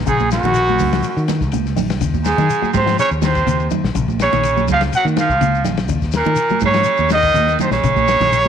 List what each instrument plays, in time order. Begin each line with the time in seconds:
0.06 fingered electric bass A#1, baritone saxophone G#2, clean electric guitar C#3, trumpet G#4, kick, ride bell, shekere
0.19 kick, high conga, shekere
0.31 baritone saxophone F#2, trumpet F#4, snare, ride bell, shekere
0.43 fingered electric bass A#1, clean electric guitar D#3, snare, high conga, shekere
0.54 ride bell, shekere
0.68 clean electric guitar F#3, high conga, shekere
0.79 fingered electric bass C#2, kick, snare, open hi-hat, high conga, low conga, shekere
0.93 clean electric guitar F3, snare, ride bell, shekere
1.03 ride bell, shekere
1.17 fingered electric bass D#3, shekere
1.28 clean electric guitar D#3, snare, ride bell, high conga, shekere
1.40 fingered electric bass C#2, kick, snare, shekere
1.52 clean electric guitar C#3, ride bell, high conga, shekere
1.66 snare, shekere
1.76 fingered electric bass A#1, clean electric guitar D#3, open hi-hat, high conga, low conga, shekere
1.90 snare, ride bell, shekere
2.01 fingered electric bass D#2, clean electric guitar C#3, kick, snare, ride bell, shekere
2.14 kick, high conga, shekere
2.24 baritone saxophone G#2, trumpet G#4, snare, ride bell, shekere
2.38 clean electric guitar D#3, fingered electric bass D#3, snare, high conga, low conga, shekere
2.50 ride bell, shekere
2.62 clean electric guitar F#3, muted fingered electric bass stroke, high conga, shekere
2.73 fingered electric bass G#2, baritone saxophone C3, trumpet C5, kick, snare, ride bell, high conga, low conga, shekere
2.86 clean electric guitar F3, snare, ride bell, shekere
2.99 baritone saxophone C#3, trumpet C#5, ride bell, shekere
3.11 fingered electric bass D#2, shekere
3.22 baritone saxophone C3, clean electric guitar D#3, trumpet C5, snare, ride bell, high conga, shekere
3.35 kick, snare, ride bell, shekere
3.46 fingered electric bass D#2, clean electric guitar C#3, ride bell, high conga, shekere
3.60 shekere
3.71 clean electric guitar D#3, ride bell, high conga, low conga, shekere
3.84 fingered electric bass A#1, snare, shekere
3.95 fingered electric bass A#1, clean electric guitar C#3, kick, ride bell, shekere
4.08 kick, high conga, shekere
4.19 baritone saxophone C#3, trumpet C#5, snare, ride bell, shekere
4.33 fingered electric bass A#1, clean electric guitar D#3, snare, high conga, shekere
4.43 ride bell, shekere
4.57 clean electric guitar F#3, high conga, shekere
4.68 fingered electric bass C#2, baritone saxophone F3, kick, snare, ride bell, high conga, low conga, shekere
4.72 trumpet F5
4.81 muted clean electric guitar stroke, snare, ride bell, shekere
4.93 baritone saxophone F#3, trumpet F#5, ride bell, shekere
5.05 fingered electric bass D#3, high conga, shekere
5.17 clean electric guitar D#3, baritone saxophone F3, trumpet F5, snare, ride bell, high conga, shekere
5.29 fingered electric bass C#2, kick, shekere
5.41 clean electric guitar C#3, ride bell, high conga, shekere
5.55 shekere
5.64 fingered electric bass A#1, clean electric guitar D#3, snare, ride bell, low conga, shekere
5.77 snare, ride bell, shekere
5.88 fingered electric bass D#2, clean electric guitar C#3, kick, ride bell, shekere
6.02 kick, snare, shekere
6.12 trumpet A#4, snare, ride bell, shekere
6.17 baritone saxophone A#2
6.24 fingered electric bass D#3, clean electric guitar D#3, high conga, shekere
6.36 ride bell, shekere
6.49 clean electric guitar F#3, muted fingered electric bass stroke, high conga, shekere
6.60 fingered electric bass G#2, kick, ride bell, high conga, low conga, shekere
6.65 baritone saxophone C#3, trumpet C#5
6.73 clean electric guitar F3, snare, ride bell, shekere
6.84 ride bell, shekere
6.97 fingered electric bass D#2, high conga, shekere
7.09 clean electric guitar D#3, baritone saxophone D#3, trumpet D#5, snare, ride bell, high conga, shekere
7.23 kick, snare, ride bell, shekere
7.34 fingered electric bass D#2, muted clean electric guitar stroke, ride bell, high conga, shekere
7.47 snare, shekere
7.59 baritone saxophone C3, clean electric guitar D#3, trumpet C5, ride bell, high conga, low conga, shekere
7.71 fingered electric bass A#1, baritone saxophone C#3, trumpet C#5, snare, shekere
7.83 fingered electric bass A#1, clean electric guitar C#3, kick, snare, ride bell, shekere
7.97 kick, high conga, shekere
8.08 snare, ride bell, shekere
8.20 fingered electric bass A#1, clean electric guitar D#3, snare, high conga, low conga, shekere
8.33 snare, ride bell, shekere
8.44 shekere